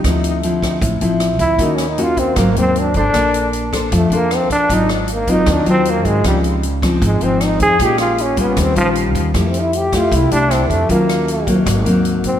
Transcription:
0.04 upright bass D2, nylon-string guitar D3 F3 C4 E4, kick, cross-stick, closed hi-hat
0.24 closed hi-hat
0.43 nylon-string guitar F3 C4 E4, closed hi-hat
0.62 kick, cross-stick, closed hi-hat
0.81 upright bass A1, nylon-string guitar A2, kick, closed hi-hat
1.01 upright bass A1, nylon-string guitar F3 C4 E4, closed hi-hat
1.20 cross-stick, closed hi-hat
1.39 upright bass D2, trombone E4, kick, closed hi-hat
1.58 upright bass D#2, nylon-string guitar D#3 A#3 C#4 F#4, kick, closed hi-hat
1.64 trombone D#4
1.75 trombone C#4, cross-stick, closed hi-hat
1.88 trombone D#4
1.98 nylon-string guitar A#3 C#4 F#4, closed hi-hat
2.02 trombone F4
2.17 trombone C4, kick, closed hi-hat
2.36 upright bass G#1, nylon-string guitar G#2 F#3 A#3 C4, trombone A#3, kick, cross-stick, closed hi-hat
2.55 upright bass D#2, nylon-string guitar F#3 A#3 C4, trombone C4, closed hi-hat
2.76 closed hi-hat
2.80 trombone D4
2.94 upright bass G#1, nylon-string guitar D4 A4 C5, trombone D4, kick, closed hi-hat
3.13 upright bass A#1, nylon-string guitar A#3, kick, cross-stick, closed hi-hat
3.34 closed hi-hat
3.53 closed hi-hat
3.73 nylon-string guitar D4 A4 C5, kick, cross-stick, closed hi-hat
3.92 upright bass F2, nylon-string guitar F3, kick, closed hi-hat
3.97 trombone A3
4.10 upright bass F2, nylon-string guitar D4 A4 C5, closed hi-hat
4.15 trombone A#3
4.31 cross-stick, closed hi-hat
4.35 trombone C4
4.50 upright bass A#1, trombone D4, kick, closed hi-hat
4.70 upright bass G#1, nylon-string guitar G#2 F#3 C4 F4, trombone D#4, kick, closed hi-hat
4.89 trombone F#3, cross-stick, closed hi-hat
5.08 closed hi-hat
5.13 trombone A#3
5.27 nylon-string guitar F#3 C4 F4, trombone D#4, kick, closed hi-hat
5.46 upright bass D#2, nylon-string guitar D#3, kick, cross-stick, closed hi-hat
5.53 trombone D4
5.66 upright bass D#2, nylon-string guitar F#3 C4 F4, closed hi-hat
5.70 trombone C4
5.85 closed hi-hat
5.90 trombone A#3
6.05 upright bass G#2, trombone G#3, kick, closed hi-hat
6.24 upright bass C#2, nylon-string guitar C#3 F3 C4 D#4, trombone G3, kick, cross-stick, closed hi-hat
6.44 closed hi-hat
6.63 closed hi-hat
6.82 nylon-string guitar F3 C4 D#4, kick, cross-stick, closed hi-hat
7.02 upright bass G#1, nylon-string guitar G#2, kick, closed hi-hat
7.06 trombone G#3
7.21 upright bass G#1, nylon-string guitar F3 C4 D#4, trombone C4, closed hi-hat
7.41 trombone D#4, cross-stick, closed hi-hat
7.60 upright bass F2, trombone G#4, kick, closed hi-hat
7.79 upright bass A#1, nylon-string guitar A#2 G#3 C#4 F4, trombone G4, kick, closed hi-hat
7.98 trombone F4, cross-stick, closed hi-hat
8.18 trombone C#4, closed hi-hat
8.37 nylon-string guitar G3 C#4 F4, trombone B3, kick, closed hi-hat
8.57 upright bass D#2, nylon-string guitar D#3, kick, cross-stick, closed hi-hat
8.61 trombone C4
8.75 upright bass A#1, trombone F3, nylon-string guitar G3 C#4 F4, closed hi-hat
8.95 closed hi-hat
9.15 upright bass D#2, kick, closed hi-hat
9.34 upright bass F2, nylon-string guitar F3 A3 E4 G4, trombone A3, kick, cross-stick, closed hi-hat
9.50 trombone C4
9.54 closed hi-hat
9.62 trombone E4
9.73 trombone G4, closed hi-hat
9.93 nylon-string guitar A3 E4 G4, kick, cross-stick, closed hi-hat
9.97 trombone F4
10.11 upright bass C2, nylon-string guitar C3, kick, closed hi-hat
10.16 trombone E4
10.31 upright bass C2, nylon-string guitar A3 E4 G4, trombone D4, closed hi-hat
10.51 trombone C4, cross-stick, closed hi-hat
10.70 upright bass F2, trombone A3, kick, closed hi-hat
10.89 upright bass D#2, nylon-string guitar D#3 F#3 C#4 F4, trombone A#3, kick, closed hi-hat
11.09 cross-stick, closed hi-hat
11.28 closed hi-hat
11.46 nylon-string guitar F#3 A#3 C4, kick, closed hi-hat
11.66 upright bass G#1, nylon-string guitar G#2, kick, cross-stick, closed hi-hat
11.85 upright bass D#2, nylon-string guitar F#3 A#3 C4, closed hi-hat
12.05 closed hi-hat
12.24 upright bass A#1, trombone C4, kick, closed hi-hat

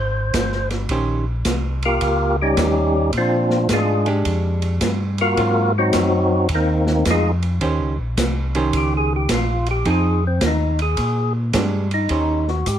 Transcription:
Already playing: tonewheel organ G#1 C5
0.33 tonewheel organ G1, kick, snare, hi-hat pedal, ride
0.52 snare
0.70 snare, ride
0.89 tonewheel organ A#1, hollow-body jazz guitar D#3 C#4 G4 C5, kick, ride
1.45 tonewheel organ C2, kick, snare, hi-hat pedal, ride
1.82 tonewheel organ A#3 F4 G4 A#4, ride
2.01 tonewheel organ C#2, kick, ride
2.42 tonewheel organ G3 C#4 D#4 G4
2.57 tonewheel organ D#2, kick, snare, hi-hat pedal, ride
3.13 tonewheel organ A#2, kick, ride
3.17 tonewheel organ F3 C4 D4 F4
3.50 snare
3.69 tonewheel organ G#2 G#4, kick, snare, hi-hat pedal, ride
3.73 tonewheel organ G#3 D4 F4
4.06 hollow-body jazz guitar G#3 D4 G4, ride
4.25 tonewheel organ F2, kick, ride
4.62 ride
4.81 tonewheel organ G2, kick, snare, hi-hat pedal, ride
5.18 tonewheel organ A#3 F4 F#4 A#4, ride
5.37 tonewheel organ G#2, hollow-body jazz guitar F#3 C4 F4, kick, ride
5.78 tonewheel organ F#3 C4 D#4 F#4
5.93 tonewheel organ F#2, kick, snare, hi-hat pedal, ride
6.49 tonewheel organ D#2, kick, ride
6.55 tonewheel organ D#3 A#3 C4 D#4
6.87 snare
7.05 tonewheel organ F2, kick, snare, hi-hat pedal, ride
7.10 tonewheel organ G#3 D#4 F4 G#4
7.43 ride
7.61 tonewheel organ D#2, hollow-body jazz guitar D#3 C#4 G4 C5, kick, ride
7.79 tonewheel organ C#2
7.99 tonewheel organ A#1
8.17 tonewheel organ C2, kick, snare, hi-hat pedal, ride
8.55 hollow-body jazz guitar D#3 C#4 G4 C5, ride
8.73 tonewheel organ C#2, kick, ride
8.77 tonewheel organ G4
8.97 tonewheel organ G#4
9.16 tonewheel organ G4
9.29 tonewheel organ A#1, kick, snare, hi-hat pedal, ride
9.34 tonewheel organ F4
9.66 ride
9.71 tonewheel organ G4
9.85 tonewheel organ F2, hollow-body jazz guitar F3 C4 D#4 G#4, kick, ride
9.90 tonewheel organ G#4
10.27 tonewheel organ C4
10.41 tonewheel organ D#2, kick, snare, hi-hat pedal, ride
10.46 tonewheel organ D#4
10.79 tonewheel organ G#4, ride
10.97 tonewheel organ A#2, kick, ride
11.53 tonewheel organ G2, hollow-body jazz guitar G#3 D4 G4, kick, snare, hi-hat pedal, ride
11.91 tonewheel organ D#4, ride
12.09 tonewheel organ D#2, hollow-body jazz guitar D#3 C#4 G4 C5, kick, ride
12.48 tonewheel organ F#4, snare
12.66 tonewheel organ G#2 G4, kick, hi-hat pedal, ride

